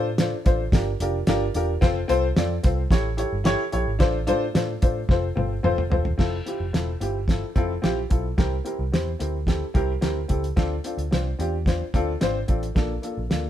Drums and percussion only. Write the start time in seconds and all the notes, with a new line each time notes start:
0.18 snare, closed hi-hat
0.46 kick, snare, closed hi-hat
0.72 kick, snare, closed hi-hat
1.00 closed hi-hat
1.27 snare, closed hi-hat
1.54 closed hi-hat
1.82 kick, snare, closed hi-hat
2.09 closed hi-hat
2.36 snare, closed hi-hat
2.64 kick, snare, closed hi-hat
2.91 kick, snare, closed hi-hat
3.18 closed hi-hat
3.45 snare, closed hi-hat
3.72 closed hi-hat
4.00 kick, snare, closed hi-hat
4.27 closed hi-hat
4.55 snare, closed hi-hat
4.82 kick, closed hi-hat
5.09 kick, snare
5.37 high tom
5.64 mid tom
5.78 mid tom
5.92 floor tom
6.05 floor tom
6.19 kick, snare, crash
6.46 closed hi-hat
6.74 snare, closed hi-hat
7.01 closed hi-hat
7.28 kick, snare, closed hi-hat
7.56 kick, closed hi-hat
7.84 snare, closed hi-hat
8.11 kick, closed hi-hat
8.38 kick, snare, closed hi-hat
8.66 closed hi-hat
8.94 snare, closed hi-hat
9.20 closed hi-hat
9.47 kick, snare, closed hi-hat
9.75 kick, closed hi-hat
10.02 snare, closed hi-hat
10.29 kick, closed hi-hat
10.44 closed hi-hat
10.57 kick, snare, closed hi-hat
10.84 closed hi-hat
10.98 closed hi-hat
11.12 snare, closed hi-hat
11.40 closed hi-hat
11.66 kick, snare, closed hi-hat
11.94 kick, closed hi-hat
12.21 snare, closed hi-hat
12.48 kick, closed hi-hat
12.63 closed hi-hat
12.76 kick, snare, closed hi-hat
13.03 closed hi-hat
13.31 snare, closed hi-hat